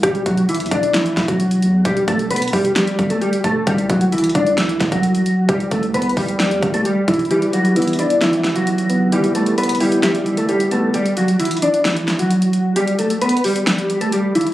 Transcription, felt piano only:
X:1
M:4/4
L:1/8
Q:1/4=132
K:Em
V:1 name="Felt piano"
z8 | z8 | z8 | z8 |
E, G, B, E e E,2 B, | E, G, B, E e E, G, B, | z8 | z8 |]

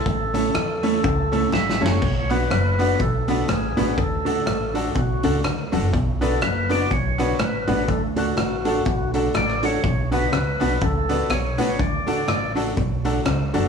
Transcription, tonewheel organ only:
X:1
M:4/4
L:1/8
Q:"Swing" 1/4=123
K:Bdor
V:1 name="Tonewheel organ"
A6 e c- | c B3 A A G2 | A4 F2 z2 | z A B d c2 B2 |
A F4 z d c- | c B3 A2 c2 | d3 z4 z |]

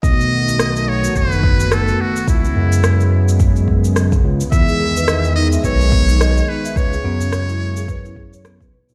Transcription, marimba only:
X:1
M:4/4
L:1/16
Q:"Swing 16ths" 1/4=107
K:C#m
V:1 name="Marimba"
z16 | z16 | B, G G B d d D e B G B, D d d D e | B G B, C c E B, G B E G c B, B B E |]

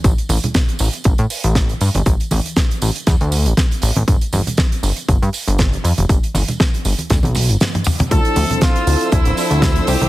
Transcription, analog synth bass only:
X:1
M:4/4
L:1/16
Q:"Swing 16ths" 1/4=119
K:Aphr
V:1 name="Analog synth bass" clef=bass
A,,, z A,,, z3 A,,, z A,,, A,, z A,,,2 z G,, G,,, | A,,, z A,,, z3 A,,, z E,, D,,2 A,,, z2 A,,, A,,, | G,,, z G,,, z3 G,,, z G,,, G,, z G,,,2 z F,, F,,, | G,,, z G,,, z3 G,,, z D,, =B,,,2 G,,, z4 |
D,, z D,, z3 D,, z D,, D,,, z D,,2 z C,, C,, |]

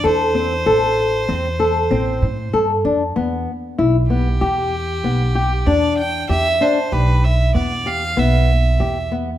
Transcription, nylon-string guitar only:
X:1
M:5/4
L:1/8
Q:1/4=96
K:Ephr
V:1 name="Nylon-string guitar"
A C A2 C A C2 A D | B,2 E B, G2 B, G D2 | G D G2 B, G B,2 G B, |]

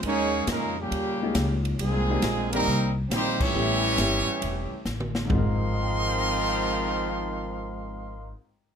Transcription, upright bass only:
X:1
M:4/4
L:1/8
Q:"Swing" 1/4=137
K:Ab
V:1 name="Upright bass" clef=bass
E,,2 F,,2 E,,2 D,,2 | C,,2 B,,,2 C,,2 B,,,2 | =A,,,2 G,,, z =E,,, z A,,,2 | A,,,8- |
A,,,8 |]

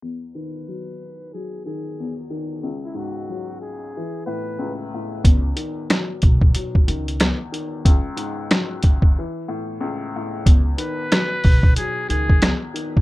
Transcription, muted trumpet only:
X:1
M:4/4
L:1/16
Q:"Swing 16ths" 1/4=92
K:C#m
V:1 name="Muted trumpet"
z2 B6 G2 G3 z3 | z E F4 G4 B3 z3 | z16 | z16 |
z2 B6 G2 G3 z3 |]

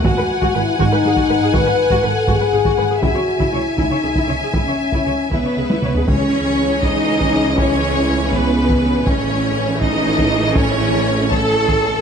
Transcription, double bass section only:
X:1
M:6/8
L:1/16
Q:3/8=80
K:C#m
V:1 name="Double bass section" clef=bass
G,,, z3 G,,, z G,,, z G,,, z G,,, z | G,,, z3 G,,, z G,,, z G,,, z G,,, z | C,, z3 C,, z C,, z C,, z C,, z | C,, z3 C,, z C,, z C,, z C,, z |
C,,12- | C,,12 | A,,,12- | A,,,12 |]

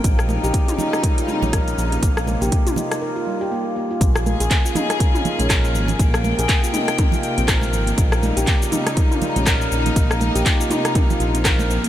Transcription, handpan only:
X:1
M:4/4
L:1/16
Q:"Swing 16ths" 1/4=121
K:Bbdor
V:1 name="Handpan"
B, z B G z F E z B F z D B z F, B, | B, z B G z F E z B F G, G B, z B, F | B, z B A z F E z B F z D B z F, B, | B, z B A z F E z B F z C B z F, B, |
B, z B G z F E z B F z D B z F, B, | B, z B G z F E z B F z C B z F, B, |]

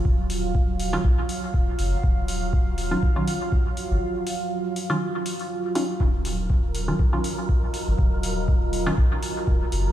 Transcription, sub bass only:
X:1
M:4/4
L:1/16
Q:"Swing 16ths" 1/4=121
K:Ebm
V:1 name="Sub bass" clef=bass
E,,,6- E,,, z B,,, z3 E,,, z G,,, z | E,,,6- E,,, z8 A,,, | z16 | E,,,6- E,,, z8 A,,, |
E,,,6- E,,, z B,,, z3 E,,, z G,,, z |]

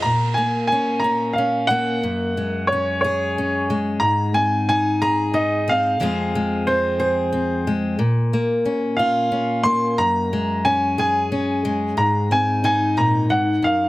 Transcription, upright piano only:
X:1
M:6/8
L:1/8
Q:3/8=60
K:Bbm
V:1 name="Upright piano"
b a a b f g- | g2 d d2 z | b a a b e f- | f2 c c2 z |
z3 f2 c' | b2 a a2 z | b a a b g f |]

